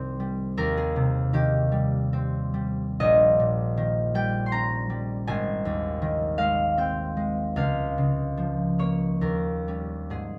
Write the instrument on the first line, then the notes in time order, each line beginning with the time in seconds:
harp
Already playing: C2 G2 D#3 G3 C4 C5 D#5
0.20 G3
0.57 D#2 A#4
0.77 G#4
0.96 C3
1.33 D#3 G4
1.72 G3
2.13 C4
2.54 G3
3.00 A#1 D#5
3.39 A#2
3.77 D#3
4.15 G3 G5
4.46 C6
4.52 C#4 A#5
4.90 G3
5.27 G#1 G#5
5.65 D#2
6.02 D#3
6.38 G#3 F5
6.77 C4 G5
7.17 G#3
7.56 C#2 F5
7.98 C#3
8.37 F3
8.79 A#3 C#5
9.21 D#2 A#4
9.68 G3 C#4
10.10 G#2 G#4